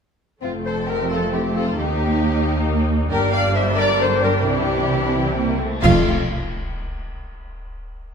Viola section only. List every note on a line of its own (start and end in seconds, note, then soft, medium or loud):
0.42 1.74 A3 soft
0.42 1.74 C4 soft
1.78 3.11 A#3 medium
1.78 3.11 D#4 soft
3.11 4.44 G3 medium
3.11 5.06 D4 medium
4.46 5.09 E3 medium
5.15 5.36 E3 medium
5.37 5.60 A#3 medium
5.60 5.82 A3 medium
5.83 6.08 A3 medium
5.83 6.08 F4 medium